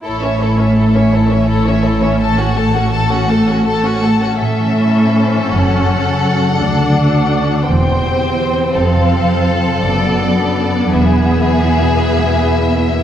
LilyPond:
<<
  \new Staff \with { instrumentName = "Violin section" } { \time 12/8 \key a \major \tempo 4. = 111 cis''8 e''8 cis''8 e''8 cis''8 e''8 cis''8 e''8 cis''8 e''8 cis''8 e''8 | a''8 fis''8 a''8 fis''8 a''8 fis''8 a''8 fis''8 a''8 fis''8 a''8 fis''8 | e''2. fis''2.~ | fis''2. g''2. |
f''2. d''2. | e''1. | }
  \new Staff \with { instrumentName = "Violin section" } { \time 12/8 \key a \major a'8 cis''8 a'8 cis''8 a'8 cis''8 a'8 cis''8 a'8 cis''8 a'8 cis''8 | a'8 fis'8 a'8 fis'8 a'8 fis'8 a'8 fis'8 a'8 fis'8 a'8 fis'8 | a'1.~ | a'2. c''2. |
a'1. | gis'1. | }
  \new Staff \with { instrumentName = "Harp" } { \time 12/8 \key a \major r1. | r1. | a,8 e8 e'8 cis''8 e'8 e8 fis,8 cis8 fis'8 cis''8 fis'8 cis8 | d8 d'8 fis'8 d''8 fis'8 d'8 e,8 e8 g'8 c''8 g'8 e8 |
f,8 c8 f'8 c''8 f'8 c8 fis,8 fis8 d'8 b'8 d'8 fis8 | e,8 b,8 e'8 b'8 e'8 b,8 e,8 gis8 e'8 b'8 e'8 b,8 | }
  \new Staff \with { instrumentName = "Viola section" } { \time 12/8 \key a \major e'8 cis'8 e'8 cis'8 e'8 cis'8 e'8 cis'8 e'8 cis'8 e'8 cis'8 | a8 cis'8 a8 cis'8 a8 cis'8 a8 cis'8 a8 cis'8 a8 cis'8 | cis'1. | d'2. c'2.~ |
c'2. b2.~ | b1. | }
  \new Staff \with { instrumentName = "Cello section" } { \clef bass \time 12/8 \key a \major a,1.~ | a,1~ a,4. r8 | a,2. fis,2. | d,2. e,2. |
f,2. fis,2. | e,1. | }
  \new Staff \with { instrumentName = "Double bass section" } { \clef bass \time 12/8 \key a \major a,,1.~ | a,,1~ a,,4. r8 | a,,4 r2 fis,,4 r2 | d,4 r2 e,,4 r2 |
f,,4 r2 fis,,4 r2 | e,,4 r1 r4 | }
>>